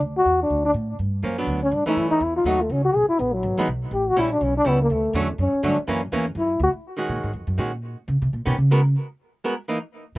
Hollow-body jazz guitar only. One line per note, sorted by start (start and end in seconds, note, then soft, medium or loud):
1.23 1.36 F3 soft
1.23 1.36 A#3 medium
1.23 1.36 C#4 medium
1.38 1.59 F#3 medium
1.38 1.59 B3 medium
1.38 1.60 D4 medium
1.86 2.19 E3 medium
1.86 2.19 A3 medium
1.86 2.20 C#4 medium
2.46 2.58 F#3 soft
2.46 2.58 A3 soft
2.46 2.59 D#4 medium
3.58 3.67 E3 medium
3.58 3.67 G#3 medium
3.58 3.67 B3 medium
3.58 3.68 D#4 medium
4.16 4.29 G3 medium
4.16 4.29 C#4 medium
4.16 4.30 E4 medium
4.65 4.77 G3 soft
4.65 4.78 C#4 soft
4.65 4.79 E4 medium
5.15 5.27 D3 medium
5.15 5.27 F#3 medium
5.15 5.27 A3 medium
5.15 5.27 C#4 medium
5.63 5.75 D3 medium
5.63 5.76 F#3 medium
5.63 5.76 A3 medium
5.63 5.76 C#4 medium
5.88 6.00 E3 medium
5.88 6.00 A#3 medium
5.88 6.01 C#4 medium
6.12 6.25 E3 medium
6.12 6.25 A#3 medium
6.12 6.25 C#4 medium
6.97 7.30 D#3 soft
6.97 7.31 G#3 soft
6.97 7.31 C#4 soft
6.97 7.31 F#4 medium
7.58 7.70 D#3 soft
7.58 7.71 G#3 soft
7.58 7.71 C#4 soft
7.58 7.71 F#4 soft
8.46 8.55 D#3 soft
8.46 8.55 B3 medium
8.46 8.55 C#4 medium
8.46 8.55 G4 medium
8.71 8.80 G#3 medium
8.71 8.80 B3 medium
8.71 8.80 F#4 medium
8.71 8.80 A#4 medium
9.44 9.53 G#3 soft
9.44 9.53 B3 medium
9.44 9.53 F#4 medium
9.44 9.53 A#4 medium
9.68 9.77 E3 medium
9.68 9.77 A#3 medium
9.68 9.78 D#4 medium